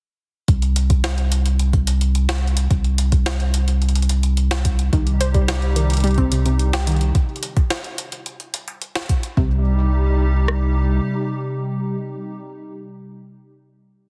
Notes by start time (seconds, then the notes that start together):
0.48 C2, kick, closed hi-hat
0.62 closed hi-hat
0.76 closed hi-hat
0.90 kick, closed hi-hat
1.04 snare, closed hi-hat
1.18 closed hi-hat
1.32 closed hi-hat
1.46 closed hi-hat
1.59 closed hi-hat
1.73 kick, closed hi-hat
1.87 closed hi-hat
2.01 closed hi-hat
2.15 closed hi-hat
2.29 snare, closed hi-hat
2.38 closed hi-hat
2.47 closed hi-hat
2.57 closed hi-hat
2.71 C2, kick, closed hi-hat
2.84 closed hi-hat
2.98 closed hi-hat
3.12 kick, closed hi-hat
3.26 snare, closed hi-hat
3.40 closed hi-hat
3.54 closed hi-hat
3.68 closed hi-hat
3.82 closed hi-hat
3.89 closed hi-hat
3.95 closed hi-hat
4.02 closed hi-hat
4.09 closed hi-hat
4.23 closed hi-hat
4.37 closed hi-hat
4.51 snare, closed hi-hat
4.65 kick, closed hi-hat
4.79 closed hi-hat
4.93 C2 C3 D#3 G3 D#4 G4, kick, closed hi-hat
5.07 closed hi-hat
5.20 C5, closed hi-hat
5.34 G3, kick, closed hi-hat
5.48 snare, closed hi-hat
5.62 closed hi-hat
5.76 D#3, closed hi-hat
5.90 closed hi-hat
5.93 closed hi-hat
5.97 closed hi-hat
6.00 closed hi-hat
6.04 G3, closed hi-hat
6.07 closed hi-hat
6.11 closed hi-hat
6.14 C4, closed hi-hat
6.18 kick, closed hi-hat
6.32 C3, closed hi-hat
6.46 C3, closed hi-hat
6.59 closed hi-hat
6.73 G4, snare, closed hi-hat
6.78 closed hi-hat
6.83 closed hi-hat
6.87 D#3, closed hi-hat
6.92 closed hi-hat
6.96 closed hi-hat
7.01 closed hi-hat
7.15 kick, closed hi-hat
7.36 closed hi-hat
7.43 closed hi-hat
7.57 kick, closed hi-hat
7.70 snare, closed hi-hat
7.84 closed hi-hat
7.98 closed hi-hat
8.12 closed hi-hat
8.26 closed hi-hat
8.40 closed hi-hat
8.54 closed hi-hat
8.68 closed hi-hat
8.82 closed hi-hat
8.95 snare, closed hi-hat
8.99 closed hi-hat
9.03 closed hi-hat
9.06 kick, closed hi-hat
9.09 closed hi-hat
9.23 closed hi-hat
9.37 C2 C3 G3 D#4 G4, kick
10.48 cross-stick